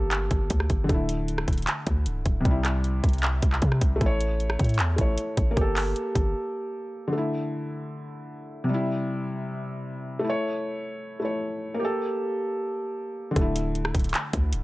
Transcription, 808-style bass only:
0.00 0.29 G1 loud
0.31 0.50 G1 loud
0.50 0.69 D2 loud
0.70 0.89 G1 loud
0.89 1.45 D1 loud
1.48 1.67 D1 loud
1.87 2.08 D2 loud
2.06 2.25 C1 loud
2.26 2.44 D1 loud
2.45 3.01 C2 loud
3.04 3.41 C2 loud
3.43 3.61 C2 loud
3.62 3.81 C3 loud
3.82 4.00 C2 loud
4.01 4.57 A1 loud
4.60 4.81 A2 loud
4.79 4.97 E2 loud
4.98 5.17 A1 loud
5.37 5.56 A1 loud
5.57 5.94 G1 loud
6.15 6.34 G1 loud
13.36 13.92 D1 loud
13.95 14.13 D1 loud
14.33 14.55 D2 loud
14.53 14.64 C1 loud

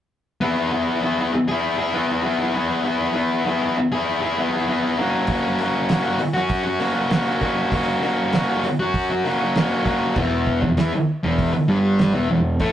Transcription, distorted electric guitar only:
0.41 0.71 B3 medium
0.41 0.73 E4 medium
0.41 0.75 G#4 medium
0.71 1.02 B3 medium
0.71 1.04 E4 medium
0.71 1.05 G#4 medium
1.02 1.32 B3 medium
1.02 1.21 E4 medium
1.02 1.17 G#4 medium
1.18 1.33 E4 soft
1.18 1.33 G#4 medium
1.33 muted distorted electric guitar stroke soft
1.48 1.81 E4 soft
1.48 1.77 G#4 medium
1.78 1.95 E4 soft
1.78 1.96 G#4 medium
1.94 2.23 B3 medium
1.94 2.11 E4 medium
1.94 2.07 G#4 medium
2.08 2.25 E4 soft
2.08 2.25 G#4 medium
2.24 2.53 B3 medium
2.24 2.42 E4 medium
2.24 2.38 G#4 medium
2.39 2.55 E4 soft
2.39 2.56 G#4 medium
2.54 2.83 B3 medium
2.54 2.85 E4 medium
2.54 2.86 G#4 medium
2.84 3.13 B3 medium
2.84 3.15 E4 medium
2.84 3.16 G#4 medium
3.14 3.44 B3 medium
3.14 3.47 E4 medium
3.14 3.47 G#4 medium
3.45 3.77 B3 medium
3.45 3.65 E4 medium
3.45 3.61 G#4 medium
3.62 3.78 E4 soft
3.62 3.77 G#4 medium
3.78 muted distorted electric guitar stroke soft
3.92 4.25 E4 soft
3.92 4.21 G#4 medium
4.22 4.39 E4 soft
4.22 4.40 G#4 medium
4.37 4.66 B3 medium
4.37 4.56 E4 medium
4.37 4.52 G#4 medium
4.53 4.69 E4 medium
4.53 4.69 G#4 medium
4.67 4.96 B3 medium
4.67 4.87 E4 medium
4.67 4.83 G#4 medium
4.84 4.99 E4 medium
4.84 4.97 G#4 medium
4.98 5.29 A#3 medium
4.98 5.31 C#4 medium
4.98 5.32 F#4 medium
5.30 5.59 A#3 medium
5.30 5.60 C#4 medium
5.30 5.62 F#4 medium
5.59 5.89 A#3 medium
5.59 5.91 C#4 medium
5.59 5.92 F#4 medium
5.89 6.19 A#3 medium
5.89 6.07 C#4 medium
5.89 6.04 F#4 medium
6.04 6.20 C#4 soft
6.04 6.20 F#4 medium
6.20 muted distorted electric guitar stroke soft
6.34 6.66 C#4 soft
6.34 6.63 F#4 medium
6.64 6.80 C#4 medium
6.64 6.81 F#4 medium
6.80 7.08 A#3 medium
6.80 6.97 C#4 medium
6.80 6.93 F#4 medium
6.94 7.10 C#4 soft
6.94 7.12 F#4 medium
7.09 7.40 A#3 medium
7.09 7.28 C#4 medium
7.09 7.25 F#4 medium
7.26 7.42 C#4 soft
7.26 7.43 F#4 medium
7.41 7.71 A#3 medium
7.41 7.73 C#4 medium
7.41 7.74 F#4 medium
7.73 8.01 A#3 medium
7.73 8.03 C#4 medium
7.73 8.04 F#4 medium
8.02 8.32 A#3 medium
8.02 8.34 C#4 medium
8.02 8.35 F#4 medium
8.34 8.64 A#3 medium
8.34 8.51 C#4 medium
8.34 8.48 F#4 medium
8.49 8.65 C#4 medium
8.49 8.66 F#4 medium
8.66 muted distorted electric guitar stroke soft
8.79 9.12 C#4 soft
8.79 9.09 F#4 medium
9.10 9.25 C#4 medium
9.10 9.27 F#4 medium
9.24 9.54 A#3 medium
9.24 9.42 C#4 medium
9.24 9.38 F#4 medium
9.39 9.56 C#4 soft
9.39 9.57 F#4 soft
9.56 9.85 A#3 medium
9.56 9.73 C#4 medium
9.56 9.69 F#4 medium
9.71 9.87 C#4 medium
9.71 9.88 F#4 medium
9.86 10.15 A#3 medium
9.86 10.16 C#4 medium
9.86 10.16 F#4 medium
10.17 10.61 E2 medium
10.17 10.62 E3 medium
10.63 10.78 E2 medium
10.78 10.92 E3 medium
10.78 10.92 E4 medium
10.93 muted distorted electric guitar stroke medium
11.23 11.52 E2 medium
11.23 11.53 E3 medium
11.54 muted distorted electric guitar stroke soft
11.68 12.13 G2 medium
11.68 12.14 G3 medium
12.14 12.28 E2 medium
12.14 12.29 E3 medium
12.29 12.54 E2 medium
12.60 12.72 A2 medium
12.60 12.72 A3 medium

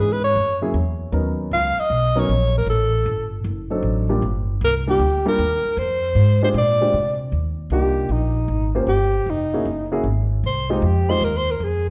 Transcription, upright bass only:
0.00 0.34 G#2 medium
0.35 0.73 F#2 medium
0.74 1.12 E2 medium
1.12 1.50 D#2 medium
1.51 1.75 C#2 medium
1.77 muted upright bass stroke soft
1.90 2.27 B1 medium
2.29 2.66 A#1 medium
2.66 3.04 A1 medium
3.05 3.43 G1 medium
3.44 3.82 F#1 medium
3.83 4.21 A1 medium
4.22 4.60 G1 medium
4.61 4.99 C2 medium
4.99 5.37 D2 medium
5.39 5.63 D#2 medium
5.65 muted upright bass stroke soft
5.77 6.15 F2 medium
6.15 6.53 G#2 loud
6.54 6.92 A#2 medium
6.94 7.31 C3 medium
7.32 7.69 D#2 medium
7.70 8.08 C2 medium
8.09 8.47 A#1 medium
8.48 8.86 G#1 medium
8.87 9.25 G1 medium
9.26 9.64 F1 medium
9.65 10.03 F#1 medium
10.04 10.42 G#1 medium
10.43 10.81 C2 medium
10.82 11.20 F2 medium
11.21 11.58 D#2 medium
11.60 11.90 F2 medium

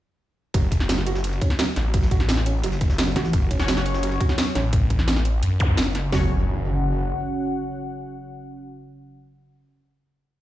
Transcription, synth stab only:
3.60 3.75 C#4 medium
3.60 3.75 F#4 medium
3.60 3.75 C#5 loud
3.77 3.82 C#4 loud
3.77 3.82 F#4 medium
3.77 3.82 C#5 loud
6.12 9.19 C#4 medium
6.12 9.19 F#4 medium
6.12 9.19 C#5 loud

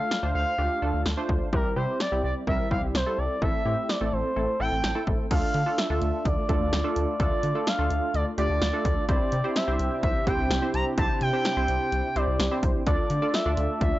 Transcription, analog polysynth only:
0.00 0.19 A3 medium
0.00 0.18 D4 medium
0.00 0.18 F4 medium
0.00 0.18 A4 medium
0.23 0.54 A3 medium
0.23 0.54 D4 medium
0.23 0.54 F4 medium
0.23 0.54 C5 medium
0.58 0.79 A3 medium
0.58 0.79 D4 medium
0.58 0.79 F4 medium
0.58 0.79 G4 medium
0.82 1.13 A3 medium
0.82 1.13 D4 medium
0.82 1.13 F4 medium
0.82 1.13 A4 medium
1.17 1.48 A3 medium
1.17 1.48 D4 medium
1.17 1.48 F4 medium
1.17 1.48 C5 loud
1.53 1.74 G3 medium
1.53 1.74 C4 medium
1.53 1.74 E4 medium
1.53 1.74 G4 medium
1.76 2.07 G3 medium
1.76 2.07 C4 medium
1.76 2.07 E4 medium
1.76 2.07 G4 medium
2.12 2.43 G3 medium
2.12 2.43 C4 medium
2.12 2.43 E4 medium
2.12 2.43 G4 medium
2.47 2.68 G3 medium
2.47 2.68 C4 medium
2.47 2.68 E4 medium
2.47 2.68 A#4 medium
2.71 3.02 G3 medium
2.71 3.02 C4 medium
2.71 3.02 E4 medium
2.71 3.02 G4 medium
3.06 3.37 G3 medium
3.06 3.37 C4 medium
3.06 3.37 E4 medium
3.06 3.37 A4 medium
3.42 3.62 A3 medium
3.42 3.62 C4 medium
3.42 3.62 E4 medium
3.42 3.62 A4 medium
3.65 3.96 A3 medium
3.65 3.96 C4 medium
3.65 3.96 E4 medium
3.65 3.96 G4 medium
4.01 4.32 A3 medium
4.01 4.32 C4 medium
4.01 4.32 E4 medium
4.01 4.32 A4 medium
4.36 4.57 A3 medium
4.36 4.57 C4 medium
4.36 4.57 E4 medium
4.36 4.57 A4 medium
4.60 4.91 A3 medium
4.60 4.91 C4 medium
4.60 4.91 E4 medium
4.60 4.91 A4 medium
4.95 5.26 A3 medium
4.95 5.26 C4 medium
4.95 5.26 E4 medium
4.95 5.26 A4 medium
5.31 5.62 A3 medium
5.31 5.62 D4 medium
5.31 5.62 F4 medium
5.31 5.62 A4 medium
5.66 5.87 A3 medium
5.66 5.87 D4 medium
5.66 5.87 F4 medium
5.66 5.87 A4 medium
5.90 6.42 A3 medium
5.90 6.42 D4 medium
5.90 6.42 F4 medium
5.90 6.42 A4 medium
6.49 6.80 A3 medium
6.49 6.80 D4 medium
6.49 6.80 F4 medium
6.49 6.80 A4 medium
6.84 7.15 A3 medium
6.84 7.15 D4 medium
6.84 7.15 F4 medium
6.84 7.15 A4 loud
7.20 7.51 A3 medium
7.20 7.51 D4 medium
7.20 7.51 F4 medium
7.20 7.51 A4 medium
7.55 7.76 A3 medium
7.55 7.76 D4 medium
7.55 7.76 F4 medium
7.55 7.76 A4 medium
7.79 8.31 A3 medium
7.79 8.31 D4 medium
7.79 8.31 F4 medium
7.79 8.31 A4 medium
8.38 8.69 A3 medium
8.38 8.69 D4 medium
8.38 8.69 F4 medium
8.38 8.69 G4 medium
8.73 9.04 A3 medium
8.73 9.04 D4 medium
8.73 9.04 F4 medium
8.73 9.04 A4 medium
9.09 9.40 C4 medium
9.09 9.40 E4 medium
9.09 9.40 G4 medium
9.09 9.40 C5 medium
9.44 9.65 C4 medium
9.44 9.65 E4 medium
9.44 9.65 G4 medium
9.44 9.65 C5 medium
9.68 10.19 C4 medium
9.68 10.19 E4 medium
9.68 10.19 G4 medium
9.68 10.19 C5 medium
10.27 10.58 C4 medium
10.27 10.58 E4 medium
10.27 10.58 G4 medium
10.27 10.58 C5 medium
10.62 10.93 C4 medium
10.62 10.93 E4 medium
10.62 10.93 G4 medium
10.62 10.93 C5 medium
10.98 11.29 C4 medium
10.98 11.29 E4 medium
10.98 11.29 G4 medium
10.98 11.29 C5 medium
11.33 11.54 C4 medium
11.33 11.54 E4 medium
11.33 11.54 G4 medium
11.33 11.54 C5 medium
11.57 12.09 C4 medium
11.57 12.09 E4 medium
11.57 12.09 G4 medium
11.57 12.09 C5 medium
12.16 12.47 C4 medium
12.16 12.47 E4 medium
12.16 12.47 G4 medium
12.16 12.47 C5 medium
12.51 12.82 C4 medium
12.51 12.82 E4 medium
12.51 12.82 G4 medium
12.51 12.82 C5 medium
12.87 13.18 D4 medium
12.87 13.18 F4 medium
12.87 13.18 A4 medium
12.87 13.18 D5 medium
13.22 13.43 D4 medium
13.22 13.43 F4 medium
13.22 13.43 A4 medium
13.22 13.43 D5 medium
13.46 13.98 D4 medium
13.46 13.98 F4 medium
13.46 13.98 A4 medium
13.46 13.98 D5 medium

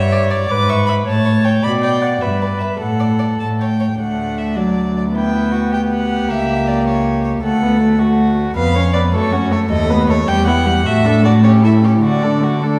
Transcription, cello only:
0.00 0.40 G2 medium
0.49 0.97 G#2 medium
1.06 1.54 A2 medium
1.63 2.12 B2 medium
2.22 2.71 G2 soft
2.80 3.30 A2 soft
3.40 3.89 A2 soft
3.99 6.25 D2 soft
6.29 7.41 C#2 soft
7.43 8.54 D2 soft
8.56 9.15 F2 medium
9.13 9.71 F#2 medium
9.70 10.27 D#2 medium
10.28 10.87 E2 medium
10.85 12.00 A2 medium
12.01 12.79 D3 soft

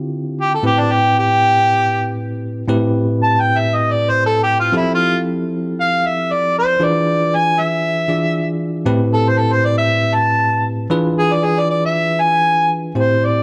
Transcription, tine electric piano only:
0.00 0.57 D3 medium
0.00 0.57 C4 medium
0.00 0.57 E4 medium
0.00 0.58 F4 medium
0.00 0.58 G4 medium
0.63 2.64 A2 medium
0.63 2.64 C4 medium
0.63 2.64 E4 medium
0.63 2.65 G4 medium
0.63 2.65 B4 medium
2.68 4.70 A2 medium
2.68 4.70 C4 medium
2.68 4.70 E4 medium
2.68 4.70 G4 medium
2.68 4.70 B4 medium
4.72 6.75 F3 medium
4.72 6.75 C4 medium
4.72 6.75 E4 medium
4.72 6.75 G4 medium
4.72 6.75 A4 medium
6.80 8.05 E3 medium
6.80 8.06 D4 medium
6.80 8.06 F4 medium
6.80 8.06 G#4 medium
6.80 8.06 B4 medium
8.08 8.85 E3 medium
8.08 8.85 D4 soft
8.08 8.85 F4 soft
8.08 8.85 G#4 soft
8.08 8.85 D5 medium
8.85 10.86 A2 medium
8.85 10.87 C4 medium
8.85 10.87 E4 medium
8.85 10.87 G4 medium
8.85 10.87 B4 medium
10.90 12.91 E3 medium
10.90 12.91 D4 medium
10.90 12.91 F4 medium
10.90 12.91 G#4 medium
10.90 12.91 B4 loud
12.95 13.43 A2 medium
12.95 13.43 C4 medium
12.95 13.43 E4 medium
12.95 13.43 G4 medium
12.95 13.43 C5 medium

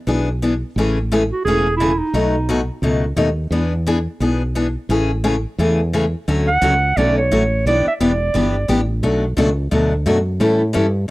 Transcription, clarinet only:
1.32 1.44 F#4 medium
1.45 1.76 G#4 loud
1.77 2.00 E4 medium
1.98 2.68 D#4 medium
6.48 6.99 F#5 loud
6.97 7.18 D5 loud
7.18 7.63 C#5 medium
7.67 7.86 D5 medium
7.88 7.94 E5 medium
8.02 8.86 D5 medium

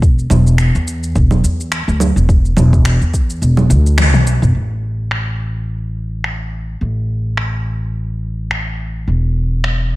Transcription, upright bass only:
0.00 0.26 E1 medium
0.31 0.69 E1 medium
0.75 1.11 E2 medium
1.15 1.38 E1 medium
1.44 1.82 E2 medium
1.88 2.09 D2 medium
2.16 2.53 E1 medium
2.57 2.96 E1 loud
3.01 3.38 E2 medium
3.42 3.71 E1 medium
3.70 4.14 D2 loud
4.14 4.36 B1 medium
4.42 4.52 E1 medium
4.55 6.79 A1 medium
6.81 9.05 A1 medium
9.07 9.96 E1 medium

